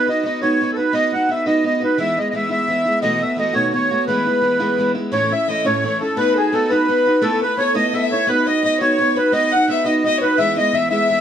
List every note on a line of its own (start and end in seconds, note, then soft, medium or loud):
0.07 0.24 D#4 soft
0.07 0.25 F#4 soft
0.07 0.24 B4 soft
0.07 0.24 D#5 medium
0.23 0.40 B3 medium
0.23 0.41 D#4 medium
0.23 0.42 F#4 medium
0.23 0.40 B4 medium
0.23 0.40 D#5 medium
0.41 0.59 B3 medium
0.41 0.60 D#4 medium
0.41 0.61 F#4 medium
0.41 0.60 B4 medium
0.41 0.71 C#5 medium
0.61 0.77 B3 soft
0.61 0.77 D#4 medium
0.61 0.77 F#4 medium
0.61 0.75 B4 medium
0.73 0.77 A4 medium
0.73 0.93 B4 soft
0.77 0.93 D#4 soft
0.77 0.93 F#4 soft
0.77 0.94 B4 medium
0.93 1.12 B3 medium
0.93 1.13 D#4 medium
0.93 1.12 F#4 medium
0.93 1.11 B4 medium
0.93 1.13 D#5 loud
1.12 1.29 D#4 soft
1.12 1.29 F#4 soft
1.12 1.29 B4 soft
1.12 1.30 F#5 medium
1.29 1.45 B3 medium
1.29 1.46 D#4 medium
1.29 1.46 F#4 soft
1.29 1.45 B4 medium
1.29 1.45 E5 medium
1.46 1.63 B3 soft
1.46 1.64 D#4 medium
1.46 1.65 F#4 medium
1.46 1.65 B4 medium
1.46 1.64 D#5 medium
1.64 1.81 B3 medium
1.64 1.82 D#4 soft
1.64 1.81 F#4 medium
1.64 1.79 B4 medium
1.64 1.82 D#5 medium
1.80 1.98 D#4 soft
1.80 1.98 F#4 soft
1.80 1.97 B4 soft
1.80 1.98 B4 medium
1.98 2.17 E3 medium
1.98 2.17 G#3 medium
1.98 2.17 B3 medium
1.98 2.16 E4 medium
1.98 2.19 E5 loud
2.17 2.33 G#3 soft
2.17 2.34 B3 soft
2.17 2.34 E4 soft
2.17 2.28 D#5 medium
2.30 2.50 E3 soft
2.30 2.34 D#5 medium
2.34 2.50 G#3 medium
2.34 2.49 B3 medium
2.34 2.48 E4 medium
2.34 2.50 E5 medium
2.49 2.67 E3 medium
2.49 2.68 G#3 medium
2.49 2.69 B3 medium
2.49 2.69 E4 medium
2.49 2.99 E5 loud
2.68 2.85 E3 medium
2.68 2.86 G#3 medium
2.68 2.85 B3 medium
2.68 2.84 E4 medium
2.85 3.03 G#3 soft
2.85 3.02 B3 soft
2.85 3.02 E4 medium
3.02 3.21 B2 medium
3.02 3.22 E3 medium
3.02 3.21 A3 medium
3.02 3.22 B3 medium
3.02 3.19 F#4 medium
3.02 3.22 D#5 loud
3.20 3.38 A3 soft
3.20 3.37 B3 soft
3.20 3.38 F#4 soft
3.20 3.37 E5 medium
3.36 3.54 E3 medium
3.36 3.53 A3 medium
3.36 3.53 B3 medium
3.36 3.52 F#4 medium
3.36 3.54 D#5 medium
3.53 3.74 B2 soft
3.53 3.72 D#3 medium
3.53 3.73 A3 medium
3.53 3.72 B3 medium
3.53 3.73 F#4 medium
3.53 3.72 C#5 medium
3.73 3.90 D#3 medium
3.73 3.91 A3 medium
3.73 3.90 B3 medium
3.73 3.90 F#4 medium
3.73 4.05 C#5 medium
3.91 4.08 A3 soft
3.91 4.08 B3 soft
3.91 4.07 F#4 soft
4.07 4.27 E3 medium
4.07 4.27 G#3 medium
4.07 4.27 B3 medium
4.07 4.25 E4 medium
4.07 4.92 B4 medium
4.26 4.42 G#3 soft
4.26 4.43 B3 soft
4.26 4.43 E4 soft
4.42 4.59 E3 medium
4.42 4.60 G#3 medium
4.42 4.59 B3 medium
4.42 4.58 E4 medium
4.60 4.77 E3 soft
4.60 4.78 G#3 medium
4.60 4.79 B3 medium
4.60 4.79 E4 medium
4.78 4.95 E3 medium
4.78 4.96 G#3 medium
4.78 4.96 B3 medium
4.78 4.94 E4 medium
4.95 5.13 G#3 soft
4.95 5.13 B3 soft
4.95 5.12 E4 soft
5.12 5.31 A2 medium
5.12 5.32 E3 medium
5.12 5.32 A3 medium
5.12 5.32 C#4 medium
5.12 5.30 E4 medium
5.12 5.34 C#5 medium
5.12 5.33 C#5 medium
5.31 5.47 A3 soft
5.31 5.48 C#4 soft
5.31 5.48 E4 soft
5.31 5.47 E5 medium
5.31 5.51 E5 medium
5.47 5.64 E3 medium
5.47 5.65 A3 medium
5.47 5.64 C#4 medium
5.47 5.63 E4 medium
5.47 5.66 D#5 medium
5.47 5.67 D#5 medium
5.65 5.85 A2 soft
5.65 5.82 E3 medium
5.65 5.84 A3 medium
5.65 5.84 C#4 medium
5.65 5.84 E4 medium
5.65 6.00 C#5 medium
5.65 5.84 C#5 medium
5.83 6.00 E3 medium
5.83 6.01 A3 medium
5.83 6.01 C#4 medium
5.83 6.00 E4 medium
5.83 6.02 C#5 medium
6.01 6.17 A3 soft
6.01 6.18 C#4 soft
6.01 6.17 E4 soft
6.01 6.18 A4 medium
6.01 6.16 A4 medium
6.17 6.36 B3 medium
6.17 6.37 D#4 medium
6.17 6.36 F#4 medium
6.17 6.37 B4 medium
6.17 6.35 B4 medium
6.34 6.54 F#4 soft
6.34 6.54 G#4 medium
6.34 6.40 A4 soft
6.34 6.53 B4 soft
6.38 6.52 D#4 soft
6.38 6.54 G#4 medium
6.52 6.70 B3 medium
6.52 6.70 D#4 medium
6.52 6.69 F#4 medium
6.52 6.71 A4 medium
6.52 6.74 A4 medium
6.52 6.69 B4 medium
6.70 6.87 B3 soft
6.70 6.88 D#4 medium
6.70 6.89 F#4 medium
6.70 7.24 B4 loud
6.70 6.89 B4 medium
6.70 7.25 B4 medium
6.88 7.05 B3 medium
6.88 7.06 D#4 medium
6.88 7.06 F#4 medium
6.88 7.04 B4 medium
7.06 7.22 D#4 soft
7.06 7.23 F#4 soft
7.06 7.22 B4 medium
7.22 7.41 A3 medium
7.22 7.42 B3 medium
7.22 7.42 E4 medium
7.22 7.40 A4 loud
7.22 7.42 A4 medium
7.22 7.45 A4 medium
7.22 7.41 B4 medium
7.42 7.57 E4 soft
7.42 7.59 A4 soft
7.42 7.59 B4 medium
7.42 7.58 B4 medium
7.57 7.75 B3 soft
7.57 7.74 E4 soft
7.57 7.74 A4 medium
7.57 7.73 B4 medium
7.57 7.76 C#5 medium
7.57 7.74 C#5 medium
7.74 7.95 A3 medium
7.74 7.92 B3 medium
7.74 7.93 E4 medium
7.74 7.93 A4 medium
7.74 7.94 B4 medium
7.74 7.93 D#5 loud
7.74 7.97 D#5 medium
7.93 8.11 B3 medium
7.93 8.11 E4 soft
7.93 8.11 A4 medium
7.93 8.10 B4 medium
7.93 8.11 E5 medium
7.93 8.29 E5 medium
8.11 8.28 E4 soft
8.11 8.28 A4 soft
8.11 8.28 B4 soft
8.11 8.29 C#5 medium
8.27 8.47 B3 medium
8.27 8.47 D#4 medium
8.27 8.47 F#4 medium
8.27 8.48 B4 medium
8.27 8.46 B4 medium
8.27 8.45 B4 medium
8.47 8.63 D#4 soft
8.47 8.63 F#4 soft
8.47 8.64 B4 soft
8.47 8.64 D#5 medium
8.47 8.63 D#5 medium
8.63 8.80 B3 medium
8.63 8.81 D#4 medium
8.63 8.80 F#4 medium
8.63 8.79 B4 medium
8.63 8.79 D#5 medium
8.63 8.81 D#5 medium
8.80 8.98 B3 soft
8.80 8.99 D#4 soft
8.80 8.99 F#4 medium
8.80 9.00 B4 medium
8.80 9.18 C#5 medium
8.99 9.16 B3 medium
8.99 9.17 D#4 medium
8.99 9.15 F#4 medium
8.99 9.14 B4 medium
9.15 9.32 D#4 soft
9.15 9.32 F#4 soft
9.15 9.32 B4 soft
9.15 9.34 B4 medium
9.15 9.32 B4 medium
9.32 9.52 B3 medium
9.32 9.52 D#4 medium
9.32 9.53 F#4 medium
9.32 9.51 B4 medium
9.32 9.53 D#5 medium
9.32 9.53 D#5 loud
9.52 9.68 D#4 soft
9.52 9.69 F#4 soft
9.52 9.69 B4 soft
9.52 9.69 F#5 medium
9.52 9.69 F#5 loud
9.68 9.85 B3 medium
9.68 9.85 D#4 soft
9.68 9.84 F#4 medium
9.68 9.83 B4 medium
9.68 9.84 E5 medium
9.68 9.85 E5 medium
9.84 10.03 B3 soft
9.84 10.04 D#4 soft
9.84 10.05 F#4 medium
9.84 10.04 B4 medium
9.84 10.03 D#5 medium
9.84 9.95 D#5 medium
10.04 10.21 B3 medium
10.04 10.22 D#4 medium
10.04 10.22 F#4 medium
10.04 10.20 B4 medium
10.04 10.22 D#5 loud
10.04 10.20 D#5 medium
10.18 10.38 B4 soft
10.18 10.38 B4 medium
10.18 10.39 B4 medium
10.18 10.23 C#5 medium
10.23 10.38 D#4 soft
10.23 10.39 F#4 soft
10.38 10.58 E3 medium
10.38 10.58 G#3 medium
10.38 10.57 B3 medium
10.38 10.55 E4 medium
10.38 10.58 E5 loud
10.38 10.56 E5 medium
10.57 10.73 G#3 soft
10.57 10.74 B3 soft
10.57 10.74 E4 medium
10.57 10.75 D#5 loud
10.57 10.76 D#5 medium
10.73 10.90 E3 medium
10.73 10.91 G#3 medium
10.73 10.90 B3 medium
10.73 10.89 E4 medium
10.73 10.88 E5 medium
10.73 10.89 E5 medium
10.90 11.08 E3 medium
10.90 11.09 G#3 medium
10.90 11.10 B3 medium
10.90 11.10 E4 medium
10.90 11.21 E5 loud
10.90 11.21 E5 medium
11.09 11.21 E3 medium
11.09 11.21 G#3 medium
11.09 11.21 B3 medium
11.09 11.21 E4 medium